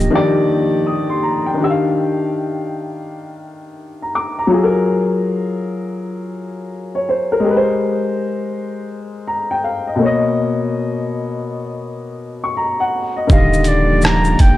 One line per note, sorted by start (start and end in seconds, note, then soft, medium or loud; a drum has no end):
0.00 1.60 D3 medium
0.00 0.10 D#3 medium
0.00 1.56 F3 medium
0.00 1.56 A#3 medium
0.00 1.56 F4 medium
0.00 0.14 G4 medium
0.00 1.56 G4 medium
0.00 1.61 F5 medium
0.00 shaker medium
0.10 1.14 D#3 loud
0.10 1.14 D4 medium
0.10 1.15 G4 medium
0.15 1.16 D5 loud
0.87 1.08 D#6 medium
1.10 1.22 C6 medium
1.23 1.45 A#5 medium
1.46 1.81 G5 medium
1.54 4.45 D#3 medium
1.54 4.47 D4 medium
1.61 4.49 G4 medium
1.61 1.70 E5 medium
1.70 4.53 F5 medium
4.02 4.15 A#5 medium
4.15 4.37 D6 medium
4.39 4.73 A#5 medium
4.47 6.29 F#3 medium
4.47 6.30 F4 medium
4.54 6.32 G#4 medium
4.54 4.63 A4 medium
4.64 6.37 A#4 medium
6.95 7.07 C#5 medium
7.09 7.31 C5 medium
7.32 7.45 A#4 medium
7.40 9.94 G#3 medium
7.40 9.96 G4 medium
7.46 9.98 A#4 medium
7.46 7.55 B4 medium
7.56 10.03 C5 medium
9.27 9.50 A#5 medium
9.51 9.63 G5 medium
9.64 9.86 F5 medium
9.87 10.04 D#5 medium
9.96 12.87 B2 medium
9.96 12.88 A#3 medium
10.02 12.90 C#5 medium
10.02 12.19 D#5 medium
12.44 12.56 C#6 medium
12.57 12.79 A#5 medium
12.80 13.15 F#5 medium
13.17 13.51 D#5 medium
13.27 14.36 D#1 loud
13.27 14.31 D3 medium
13.27 14.30 D#3 medium
13.27 14.57 F3 medium
13.27 14.57 A#3 medium
13.27 14.57 F4 medium
13.27 14.57 G4 medium
13.27 14.32 G4 medium
13.27 kick loud
13.27 shaker medium
13.32 13.69 D#5 medium
13.32 14.33 F5 medium
13.53 shaker medium
13.64 14.06 D5 medium
13.64 closed hi-hat medium
13.64 shaker soft
14.01 14.42 A#5 loud
14.01 cross-stick loud
14.01 shaker medium
14.24 shaker soft
14.39 14.57 F1 loud
14.39 14.57 G5 medium
14.39 kick medium
14.39 closed hi-hat medium
14.39 shaker soft